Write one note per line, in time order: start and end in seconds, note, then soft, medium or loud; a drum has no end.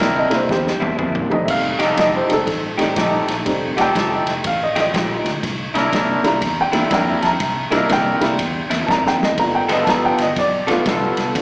0.00 0.23 C2 medium
0.00 0.36 C3 medium
0.00 0.37 A#3 medium
0.00 0.38 D4 medium
0.00 0.37 D4 medium
0.00 0.39 E4 medium
0.00 0.37 E4 medium
0.00 0.39 A#4 medium
0.00 0.16 G5 medium
0.00 kick medium
0.00 snare loud
0.00 ride medium
0.18 0.33 D#5 medium
0.30 0.45 C2 medium
0.30 0.47 G3 medium
0.30 0.47 A#3 medium
0.30 0.47 D4 medium
0.30 0.48 E4 medium
0.30 snare soft
0.30 ride medium
0.35 0.50 C5 medium
0.49 0.73 E2 medium
0.49 0.96 G4 medium
0.49 0.98 C5 loud
0.49 kick medium
0.49 snare medium
0.67 snare medium
0.80 0.94 E2 medium
0.80 0.96 C3 medium
0.80 0.97 A#3 medium
0.80 0.97 D4 medium
0.80 0.98 E4 medium
0.80 high tom medium
0.98 1.22 F2 medium
0.98 1.35 C3 medium
0.98 1.35 A#3 medium
0.98 1.35 D4 medium
0.98 1.36 E4 medium
0.98 kick medium
0.98 mid tom medium
1.15 mid tom medium
1.29 1.44 F2 medium
1.29 1.93 G3 medium
1.29 1.94 A3 medium
1.29 1.94 C4 medium
1.29 1.94 D#4 medium
1.29 floor tom medium
1.34 1.49 D#5 medium
1.45 1.72 F1 medium
1.45 1.49 E5 medium
1.45 kick medium
1.45 ride medium
1.45 crash medium
1.50 1.97 F5 loud
1.50 snare soft
1.79 1.93 F1 medium
1.79 1.96 F3 medium
1.79 1.96 A3 medium
1.79 2.36 D#4 medium
1.79 1.96 D#4 medium
1.79 1.97 G4 medium
1.79 2.36 G4 medium
1.79 2.37 A4 medium
1.79 snare soft
1.79 ride medium
1.97 2.21 F1 medium
1.97 2.34 F3 medium
1.97 2.34 A3 medium
1.97 2.34 D#4 medium
1.97 2.35 G4 medium
1.97 2.14 D#5 medium
1.97 kick medium
1.97 snare loud
1.97 ride medium
2.16 2.31 C5 medium
2.29 2.42 F1 medium
2.29 2.45 G3 medium
2.29 2.45 A3 medium
2.29 2.46 C4 medium
2.29 2.46 D#4 medium
2.29 snare soft
2.29 ride medium
2.33 2.58 A4 loud
2.47 2.70 A1 medium
2.47 kick medium
2.47 snare soft
2.47 ride medium
2.78 2.91 A1 medium
2.78 2.95 F3 medium
2.78 2.94 G3 medium
2.78 2.96 A3 medium
2.78 2.95 A3 medium
2.78 2.95 C4 medium
2.78 2.96 D#4 medium
2.78 2.95 D#4 medium
2.78 2.96 G4 medium
2.78 snare soft
2.78 ride medium
2.96 3.20 A#1 medium
2.96 3.33 F3 medium
2.96 3.33 A3 medium
2.96 3.42 D#4 medium
2.96 3.33 D#4 medium
2.96 3.42 G4 medium
2.96 3.34 G4 medium
2.96 3.42 A4 medium
2.96 kick medium
2.96 snare loud
2.96 ride medium
3.28 3.41 A#1 medium
3.28 snare soft
3.28 ride medium
3.45 4.20 G3 medium
3.45 4.20 A3 medium
3.45 4.21 C4 medium
3.45 4.21 D#4 medium
3.45 kick medium
3.45 snare soft
3.45 ride medium
3.76 3.90 F1 medium
3.76 3.93 F3 medium
3.76 3.94 A3 medium
3.76 4.33 D#4 medium
3.76 3.94 D#4 medium
3.76 3.95 G4 medium
3.76 4.34 G4 medium
3.76 4.34 A4 medium
3.76 3.81 F#5 medium
3.76 snare soft
3.76 ride medium
3.81 4.44 G5 loud
3.95 4.19 F1 medium
3.95 4.32 F3 medium
3.95 4.32 A3 medium
3.95 4.32 D#4 medium
3.95 4.32 G4 medium
3.95 kick medium
3.95 snare loud
3.95 ride medium
4.26 4.39 F1 medium
4.26 snare soft
4.26 ride medium
4.44 4.68 A1 medium
4.44 4.62 F5 medium
4.44 kick medium
4.44 snare soft
4.44 ride medium
4.63 4.78 D#5 medium
4.75 4.89 A1 medium
4.75 4.92 F3 medium
4.75 4.92 A3 medium
4.75 4.93 D#4 medium
4.75 4.93 G4 medium
4.75 snare soft
4.75 ride medium
4.80 5.05 D#5 loud
4.93 5.18 A#1 medium
4.93 5.30 F3 medium
4.93 5.30 A3 medium
4.93 5.31 D#4 medium
4.93 5.31 G4 medium
4.93 kick medium
4.93 snare loud
4.93 ride medium
5.24 5.38 D2 medium
5.24 snare soft
5.24 ride medium
5.43 5.67 C2 medium
5.43 kick medium
5.43 snare soft
5.43 ride medium
5.73 5.88 C2 medium
5.73 5.90 C3 medium
5.73 5.91 A#3 medium
5.73 6.30 D4 medium
5.73 5.91 D4 medium
5.73 5.91 E4 loud
5.73 6.31 E4 medium
5.73 6.31 A#4 medium
5.73 snare soft
5.73 ride medium
5.91 6.16 C2 medium
5.91 6.29 C3 medium
5.91 6.29 A#3 medium
5.91 6.29 D4 medium
5.91 6.29 E4 medium
5.91 kick medium
5.91 snare loud
5.91 ride medium
6.23 6.37 C2 medium
6.23 6.40 G3 medium
6.23 6.40 A#3 medium
6.23 6.40 D4 medium
6.23 6.41 E4 medium
6.23 snare soft
6.23 ride medium
6.27 6.58 A#5 loud
6.42 6.65 E2 medium
6.42 kick medium
6.42 snare soft
6.42 ride medium
6.61 6.91 G5 medium
6.72 6.86 E2 medium
6.72 6.89 C3 medium
6.72 6.89 G3 medium
6.72 6.89 A#3 medium
6.72 6.90 D4 medium
6.72 6.89 D4 medium
6.72 6.90 E4 medium
6.72 snare soft
6.72 ride medium
6.90 7.15 F2 medium
6.90 7.27 C3 medium
6.90 7.28 A#3 medium
6.90 7.36 D4 medium
6.90 7.28 D4 medium
6.90 7.37 E4 medium
6.90 7.28 E4 medium
6.90 7.37 A#4 medium
6.90 7.24 G5 medium
6.90 kick medium
6.90 snare loud
6.90 ride medium
7.22 7.36 F2 medium
7.22 7.26 A5 medium
7.22 snare soft
7.22 ride medium
7.27 7.73 A#5 medium
7.40 7.64 C2 medium
7.40 kick medium
7.40 snare soft
7.40 ride medium
7.70 7.85 C2 medium
7.70 7.87 C3 medium
7.70 7.87 G3 medium
7.70 7.87 A#3 medium
7.70 7.88 A#3 medium
7.70 8.28 D4 medium
7.70 7.88 D4 medium
7.70 7.88 E4 medium
7.70 8.28 E4 medium
7.70 7.88 E4 medium
7.70 8.29 A#4 medium
7.70 snare soft
7.70 ride medium
7.75 7.90 D#5 medium
7.88 8.13 C2 medium
7.88 8.26 C3 medium
7.88 8.26 A#3 medium
7.88 8.26 D4 medium
7.88 8.27 E4 medium
7.88 8.39 G5 loud
7.88 kick medium
7.88 snare loud
7.88 ride medium
8.19 8.35 C2 medium
8.19 8.36 G3 medium
8.19 8.37 A#3 medium
8.19 8.37 D4 medium
8.19 8.37 E4 medium
8.19 snare soft
8.19 ride medium
8.39 8.63 E2 medium
8.39 kick medium
8.39 snare soft
8.39 ride medium
8.70 8.84 E2 medium
8.70 8.86 C3 medium
8.70 8.87 A#3 medium
8.70 8.87 D4 medium
8.70 8.88 E4 medium
8.70 snare soft
8.70 ride medium
8.86 9.12 F2 medium
8.86 9.25 C3 medium
8.86 9.25 A#3 medium
8.86 9.25 D4 medium
8.86 9.25 E4 medium
8.86 8.90 A5 medium
8.86 9.05 A#5 loud
8.86 kick medium
8.86 snare medium
9.07 9.22 G5 medium
9.07 snare medium
9.20 9.33 F2 medium
9.20 9.38 D#5 medium
9.20 snare medium
9.36 9.61 G1 medium
9.36 9.65 A3 medium
9.36 9.66 B3 medium
9.36 9.66 D4 medium
9.36 9.67 F4 medium
9.36 9.55 A#5 loud
9.36 kick medium
9.36 snare soft
9.36 ride medium
9.55 9.71 G5 medium
9.68 9.83 G1 medium
9.68 9.85 G3 medium
9.68 10.25 B3 medium
9.68 9.85 B3 medium
9.68 10.26 F4 medium
9.68 9.86 F4 medium
9.68 9.86 A4 medium
9.68 10.26 A4 medium
9.68 snare soft
9.68 ride medium
9.72 9.88 D#5 medium
9.85 10.10 G1 medium
9.85 10.24 G3 medium
9.85 10.24 B3 medium
9.85 10.24 F4 medium
9.85 10.24 A4 medium
9.85 9.88 A5 medium
9.85 kick medium
9.85 snare loud
9.85 ride medium
9.89 10.04 A#5 medium
10.05 10.20 G5 medium
10.18 10.31 G1 medium
10.18 snare soft
10.18 ride medium
10.22 10.37 D#5 medium
10.36 10.60 B1 medium
10.36 10.86 D5 loud
10.36 kick medium
10.36 snare soft
10.36 ride medium
10.67 10.81 B1 medium
10.67 10.84 G3 medium
10.67 10.84 A3 medium
10.67 10.84 B3 medium
10.67 10.85 D4 medium
10.67 10.85 F4 medium
10.67 10.85 A4 medium
10.67 snare soft
10.67 ride medium
10.85 11.09 C2 medium
10.85 11.22 G3 medium
10.85 11.31 B3 medium
10.85 11.23 B3 medium
10.85 11.31 F4 medium
10.85 11.23 F4 medium
10.85 11.23 A4 medium
10.85 11.32 A4 medium
10.85 kick medium
10.85 snare loud
10.85 ride medium
11.17 11.30 C2 medium
11.17 snare soft
11.17 ride medium
11.34 11.42 G1 medium
11.34 11.42 A3 medium
11.34 11.42 B3 medium
11.34 11.42 D4 medium
11.34 11.42 F4 medium
11.34 kick medium
11.34 snare soft
11.34 ride medium